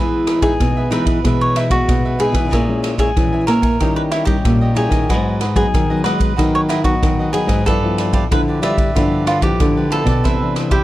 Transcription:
Already playing: E3 G#3 B3 G#4 B4 E5
0.27 D#4 G#4 B4 E5, cross-stick, ride
0.42 G#3 B3 D#4 G#4 B4 E5, kick, ride
0.60 B2, kick, cross-stick, ride
0.77 G#4 B4 E5
0.90 E3 G#3 B3 D#4 G#4 B4 E5, cross-stick, ride
1.05 G#4 B4 E5, kick, ride
1.24 B2 E3 G#3 B3 G#4 B4 E5, kick, cross-stick, ride
1.41 C#5
1.56 D#4 E4 G#4 B4 E5, cross-stick, ride
1.70 G#3 B3 F#4 G#4 B4 E5, kick, ride
1.88 B2, kick, cross-stick, ride
2.05 G#4 B4 E5
2.19 G#3 B3 D#4 G#4 B4 E5, ride
2.32 E3 G#4 B4 E5, kick, cross-stick, ride
2.52 A#2 G#3 C#4 E4 A#4 C#5 E5 G#5, kick, cross-stick, ride
2.68 G#3 C#4 E4
2.83 A#4 C#5 E5 G#5, cross-stick, ride
2.98 G#3 C#4 E4 G#4 A#4 C#5 E5 G#5, kick, ride
3.16 A#2 E3 G#3 C#4 E4, kick, cross-stick, ride
3.33 C#5 E5 G#5
3.47 A#3 A#4 C#5 E5 G#5, cross-stick, ride
3.62 C#5 E5 G#5, kick, ride
3.80 D#3 G3 C#4 D#4 E4 G4 C#5 D#5, kick, cross-stick, ride
3.96 B4
4.11 D#4 E4 G4 C#5 D#5, cross-stick, ride
4.25 G3 C#4 E4 G4 C#5 D#5, kick, ride
4.45 A#2, kick, cross-stick, ride
4.61 G4 C#5 D#5
4.75 G3 C#4 D#4 E4 G4 G#4 C#5 D#5, ride
4.89 D#3 G4 C#5 D#5, kick, cross-stick, ride
5.09 G#2 F#3 B3 D#4 F#4 G#4 B4 D#5, kick, cross-stick, ride
5.40 F#4 G#4 B4 D#5, cross-stick, ride
5.55 F#3 B3 D#4 F#4 G#4 B4 D#5, kick, ride
5.74 D#3, kick, cross-stick, ride
5.90 F#3 B3 D#4 G#4 B4 D#5
6.04 G#3 F#4 G#4 B4 D#5, cross-stick, ride
6.18 G#4 B4 D#5, kick, ride
6.36 G#2 D#3 F#3 B3 D#4 F#4 G#4 B4 D#5, kick, cross-stick, ride
6.55 C#5
6.69 E4 F#4 G#4 B4 D#5, cross-stick, ride
6.84 F#3 B3 D#4 F#4 G#4 B4 D#5, kick, ride
7.03 D#3, kick, cross-stick, ride
7.19 G#4 B4 D#5
7.33 F#3 B3 D#4 F#4 G#4 B4 D#5, ride
7.47 G#2 G#4 B4 D#5, kick, cross-stick, ride
7.66 G2 F3 B3 E4 F4 G4 A4 B4 D5, kick, cross-stick, ride
7.83 F3 B3 E4
7.97 F4 G4 B4 D5, cross-stick, ride
8.13 F4 G4 B4 D5, kick, ride
8.31 D3 F3 B3 E4 B4, kick, cross-stick, ride
8.48 G4 B4 D5
8.62 G3 F4 G4 B4 D5 E5, cross-stick, ride
8.78 G4 B4, kick, ride
8.95 G2 D3 F3 B3 E4 F4 G4 B4 D5, kick, cross-stick, ride
9.26 F4 G4 B4 D5, cross-stick, ride
9.41 F3 B3 E4 G4 B4 D5, kick, ride
9.60 D3, kick, cross-stick, ride
9.77 G4 B4 D5
9.90 F3 B3 E4 F4 G4 A4 B4 D5, ride
10.04 B2 G4 B4 D5, kick, cross-stick, ride
10.24 C3 E3 B3 D4 E4 B4 C5 E5, kick, cross-stick, ride
10.42 E3 B3 D4
10.55 E4 B4 C5 E5, cross-stick, ride
10.71 E4 G4 B4 C5 E5, kick, ride

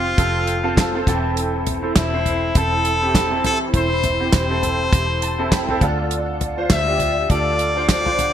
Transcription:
Already playing: F1 C4 F4 G4 A4 C5
0.17 F1 C4 F4 A4, kick, closed hi-hat
0.47 closed hi-hat
0.63 C4 F4 A4
0.77 A5, kick, snare, clap, closed hi-hat
0.94 C4 F4 A4
1.07 E1 E3 C4 E4 A4 G5, kick, snare, closed hi-hat
1.37 closed hi-hat
1.67 closed hi-hat, floor tom
1.82 C4 E4 A4
1.96 E1 E4, kick, snare, clap, closed hi-hat
2.12 C4 E4 C5
2.26 closed hi-hat, floor tom
2.55 E1 C4 E4 A4, kick, closed hi-hat
2.85 closed hi-hat
3.02 C4 E4 G4
3.15 kick, snare, clap, closed hi-hat
3.31 C4 E4 A4
3.44 E3 A4, snare, closed hi-hat, floor tom
3.74 E1 C4 E4 C5, kick, closed hi-hat
4.03 closed hi-hat, floor tom
4.20 C4 E4 G4
4.32 E1 C5, kick, snare, clap, closed hi-hat
4.50 C4 E4 A4
4.63 closed hi-hat, floor tom
4.93 E1 C4 E4 G4, kick, closed hi-hat
5.22 A5, closed hi-hat
5.38 C4 E4 A4
5.52 G5, kick, snare, clap, closed hi-hat
5.69 C4 E4 A4, floor tom
5.81 D2 D3 D4 F4 A4 F5, kick, closed hi-hat, floor tom
6.11 closed hi-hat
6.41 closed hi-hat, floor tom
6.57 D4 F4 C5
6.70 D2 E5, kick, snare, clap, closed hi-hat
6.87 D4 F4 G4
6.99 closed hi-hat, floor tom
7.29 D2 D4 F4 A4 D5, kick, closed hi-hat
7.59 closed hi-hat
7.76 D4 F4 C5
7.89 D5, kick, snare, clap, closed hi-hat
8.05 D4 F4 C5, floor tom
8.19 D3, closed hi-hat, floor tom

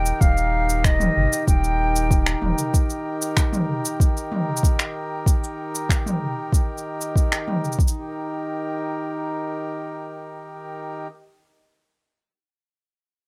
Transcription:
Already playing: D#1 D#3 D#4 G4 A#4 G5
0.06 shaker
0.21 D#1 F5, kick, shaker
0.37 shaker
0.69 shaker
0.84 D#5, finger snap, kick, shaker
1.00 mid tom, shaker
1.17 G1
1.33 shaker
1.48 D#1 G5, kick, shaker
1.64 shaker
1.96 shaker
2.11 kick, shaker
2.26 finger snap, shaker
2.42 D#1, mid tom
2.58 shaker
2.74 kick, shaker
2.90 shaker
3.22 shaker
3.37 finger snap, kick, shaker
3.53 mid tom, shaker
3.85 shaker
4.00 kick, shaker
4.17 shaker
4.32 mid tom
4.57 shaker
4.63 kick, shaker
4.79 finger snap, shaker
5.26 kick, shaker
5.44 shaker
5.75 shaker
5.89 finger snap, kick, shaker
6.06 mid tom, shaker
6.53 kick, shaker
6.78 shaker
7.01 shaker
7.16 kick, shaker
7.32 finger snap, shaker
7.48 mid tom
7.65 shaker
7.72 shaker
7.79 D#3, kick, shaker
7.88 D#4, shaker
7.98 G4
8.08 A#4

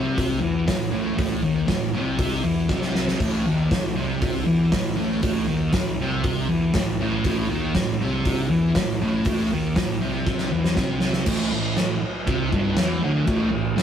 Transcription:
Already playing: C2 C3
0.18 kick, open hi-hat
0.41 E2 E3
0.67 A1 A2, kick, snare, open hi-hat
0.92 A1 A2
1.17 A1 A2, kick, open hi-hat
1.43 D#2 D#3
1.67 A1 A2, kick, snare, open hi-hat
1.93 C2 C3
2.19 kick, open hi-hat
2.44 E2 E3
2.69 C2 C3, kick, snare
2.82 snare
2.95 snare
3.08 snare
3.20 A1 A2, kick, open hi-hat, splash
3.46 D#2 D#3
3.71 A1 A2, kick, snare, open hi-hat
3.95 C2 C3
4.22 kick, open hi-hat
4.45 E2 E3
4.72 A1 A2, kick, snare, open hi-hat
4.96 A1 A2
5.22 A1 A2, kick, open hi-hat
5.48 D#2 D#3
5.73 A1 A2, kick, snare, open hi-hat
6.00 C2 C3
6.24 kick, open hi-hat
6.49 E2 E3
6.74 A1 A2, kick, snare, open hi-hat
7.00 A1 A2
7.24 A1 A2, kick, open hi-hat
7.48 D#2 D#3
7.75 A1 A2, kick, snare, open hi-hat
7.99 C2 C3
8.25 kick, open hi-hat
8.49 E2 E3
8.75 A1 A2, kick, snare, open hi-hat
9.01 A1 A2
9.25 A1 A2, kick, open hi-hat
9.51 D#2 D#3
9.76 A1 A2, kick, snare, open hi-hat
10.01 C2 C3
10.26 kick, snare
10.38 snare
10.52 E2 E3
10.64 snare
10.76 C2 C3, kick, snare
11.00 snare
11.13 snare
11.26 A1 A2, kick, crash
11.53 A1 A2
11.77 A1 A2, snare, crash
12.27 C2 C3, kick, crash
12.52 G1 G2, kick
12.77 E2 E3, snare, crash
13.02 D2 D3
13.27 A1 A2, kick, crash
13.52 A1 A2
13.76 A1 A2, snare, crash

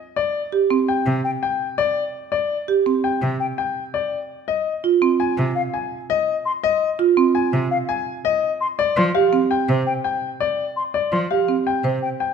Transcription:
0.16 D5
0.53 G4
0.70 C4
0.88 G5
1.06 C3
1.24 G5
1.43 G5
1.78 D5
2.32 D5
2.68 G4
2.86 C4
3.04 G5
3.22 C3
3.40 G5
3.58 G5
3.94 D5
4.48 D#5
4.84 F4
5.02 C4
5.20 G#5
5.38 C3
5.55 F5
5.74 G#5
6.10 D#5
6.45 C6
6.63 D#5
6.99 F4
7.17 C4
7.35 G#5
7.53 C3
7.71 F5
7.89 G#5
8.25 D#5
8.61 C6
8.79 D5
8.97 F3 C6
9.14 G4 F5
9.33 C4
9.51 G5
9.69 C3 C5
9.87 G5
10.04 G5
10.40 D5
10.76 C6
10.94 D5
11.12 F3 C6
11.31 G4 F5
11.49 C4
11.67 G5
11.84 C3 C5
12.02 G5
12.20 G5

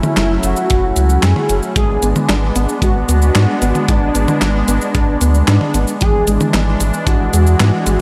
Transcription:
Already playing: F#3 A3 C#4 E4
0.03 mid tom, cabasa
0.17 F#1, snare, clap, closed hi-hat, cabasa
0.43 F#1 F#4, closed hi-hat, cabasa
0.57 cabasa
0.70 F#1, kick, closed hi-hat, cabasa
0.96 C#2, closed hi-hat, cabasa
1.10 cabasa
1.23 F#2 G#4, snare, clap, closed hi-hat, cabasa
1.36 mid tom
1.49 F#1, closed hi-hat, cabasa
1.63 cabasa
1.76 G#1 G#3 B3 D4 G#4, kick, closed hi-hat, cabasa
2.03 G#1 B3, closed hi-hat, cabasa
2.16 mid tom, cabasa
2.29 G#1 D4, snare, clap, closed hi-hat, cabasa
2.56 G#1 B3, closed hi-hat, cabasa
2.69 cabasa
2.82 G#1 G#3 F#4, kick, closed hi-hat, cabasa
3.09 D2 B3, closed hi-hat, cabasa
3.22 cabasa
3.35 G#2 D4, snare, clap, closed hi-hat, cabasa
3.62 G#1 B3, closed hi-hat, cabasa
3.75 mid tom, cabasa
3.88 G#1 G#3 D4, kick, closed hi-hat, cabasa
4.15 G#1 B3, closed hi-hat, cabasa
4.28 mid tom, cabasa
4.42 G#1 D4, snare, clap, closed hi-hat, cabasa
4.68 G#1 B3 D4, closed hi-hat, cabasa
4.81 cabasa
4.95 G#1 G#3, kick, closed hi-hat, cabasa
5.21 D2 B3, closed hi-hat, cabasa
5.35 cabasa
5.48 G#2 D4, snare, clap, closed hi-hat, cabasa
5.61 mid tom
5.74 G#1 B3, closed hi-hat, cabasa
5.88 cabasa
6.01 G#1 E3 G#3 D4 G#4, kick, closed hi-hat, cabasa
6.27 G#1 G#3, closed hi-hat, cabasa
6.41 mid tom, cabasa
6.54 G#1 B3, snare, clap, closed hi-hat, cabasa
6.80 G#1 G#3, closed hi-hat, cabasa
6.94 cabasa
7.07 G#1 E3 F#4, kick, closed hi-hat, cabasa
7.33 E2 G#3, closed hi-hat, cabasa
7.47 cabasa
7.60 G#2 B3, snare, clap, closed hi-hat, cabasa
7.87 G#1 G#3, closed hi-hat, cabasa

